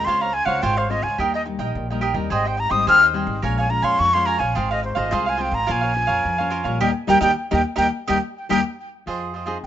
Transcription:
Already playing: G#3 C4 F4
0.05 C#2 C#3 F4 C5 C#5 C6
0.09 F5
0.21 C5 C#5 F5 A#5
0.33 G#5, muted cavaquinho stroke
0.45 C#2 G#3 C4 F4 C5 C#5 F5 F#5
0.62 G#1 G#2 F4 C5 C#5 F5 G5
0.77 C5 C#5 F5
0.90 G#3 C4 F4 C5 C#5 D#5 F5
1.02 C#2 G#5
1.18 D#2 D#3 G3 A#3 D#4 G4 A#4 D#5 G5
1.34 A#4 D#5 G5
1.45 G3 A#3 D#4, muted cavaquinho stroke
1.59 A#1 A#4 D#5 G5
1.75 A#1 A#2
1.90 G3 A#3 D#4 A#4 D#5 G5
2.01 G4 A#4 D#5 G5
2.14 D#2 G3 C4 D#4 A#4 D#5 G5
2.30 G#1 G#2 G#4 C5 D#5 G5
2.45 C5 D#5 G5
2.57 A#5, muted cavaquinho stroke
2.69 G#1 G3 C4 D#4 C5 D#5 G5 D#6
2.87 D#2 D#3 G#4 C5 D#5 G5 F6
3.02 C5 D#5 G5
3.13 G3 C4 D#4 G#4 C5 D#5 G5
3.27 G#1
3.42 A#1 A#2 G#3 C#4 F4 A#4 C#5 F5 G#5
3.58 C#5 F5 G#5
3.69 G#3 C#4 F4 A#5, muted cavaquinho stroke
3.82 F2 C#5 F5 G#5 C6
3.99 F2 F3 C#6
4.14 G#3 C#4 F4 C#5 F5 G#5 C6
4.25 A#4 C#5 F5 G#5 A#5
4.39 A#1 C4 F4 C5 C#5 F5 G#5
4.55 G#1 G#3 F4 G#4 C5 F5 G5
4.71 G#4 C5 D#5 F5
4.83 C5, muted cavaquinho stroke
4.95 G#1 C4 F4 G#4 C5 D#5 F5
5.11 C2 G#3 F4 G#4 C5 F5
5.26 G#4 C5 F5 G#5
5.37 C4 F4 G#4 C5 F5
5.42 G5
5.52 G#1 A#5
5.67 A#1 A#3 C#4 F4 A#4 C5 C#5 F5
5.71 G#5
5.81 A#4 C#5 F5
5.94 C#4 F4 C5, muted cavaquinho stroke
6.07 F2 A#4 C#5 F5
6.25 F2 F3
6.38 C#4 F4 A#4 C5 C#5 F5
6.50 F4 A#4 C#5 F5
6.64 A#1 G3 A#3 F4 A#4 C#5 F5
6.80 D#2 G3 A#3 D#4 G4 A#4 D#5 G5
7.07 D#2 G3 A#3 D#4 G4 A#4 D#5 G5
7.20 D#2 G3 A#3 D#4 G4 A#4 D#5 G5
7.51 D#2 G3 A#3 D#4 G4 A#4 D#5 G5
7.76 D#2 G3 A#3 D#4 G4 A#4 D#5 G5
8.08 D#2 G3 A#3 D#4 G4 A#4 D#5 G5
8.49 D#2 G3 A#3 D#4 G4 A#4 D#5 G5
9.06 F2 F3 F4 G#4 C5 D#5
9.34 F4 G#4 C5 D#5
9.46 C4 D#4 F4 G#4 C5 D#5
9.63 C3

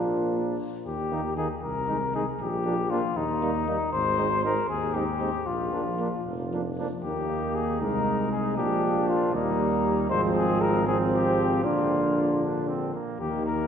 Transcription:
Already playing: A#1 F3 A#3 D4
0.86 D#2 G4
1.12 D#3 A#3 D#4
1.37 D#3 A#3 D#4 G#4
1.63 C2 A#4
1.88 D#3 G#3 D#4
2.14 D#3 G#3 D#4 G#4
2.40 A#1 G4
2.65 F3 A#3 D4
2.90 F3 A#3 D4 F4
3.16 D#2 D#4
3.42 G3 A#3 D#4
3.67 G3 A#3 D#4
3.92 G#1 C5
4.18 G#3 C4 D#4
4.43 G#3 C4 D#4 A#4
4.69 D#2 G#4
4.94 G#3 C4 D#4 G4
5.21 G#3 C4 D#4
5.47 A#1 F4
5.72 F3 A#3 D4
5.98 F3 A#3 D4
6.25 F1
6.51 F3 A#3 D4
6.77 F3 A#3 D4
7.03 D#2 A#3 D#4 G4
7.55 G#4
7.81 C2 G#3 A#4
8.32 G#4
8.57 A#1 F3 A#3 D4 G4
9.09 F4
9.33 D#2 G3 A#3 D#4
10.10 G#1 F3 G#3 C4 C5
10.36 G#4
10.61 A#4
10.87 F3 C4 G#4
11.12 G4
11.64 A#1 D3 A#3 D4 F4
12.42 D4
12.68 C4
12.94 A#3
13.20 D#2 D#3 A#3 G4
13.46 A#4

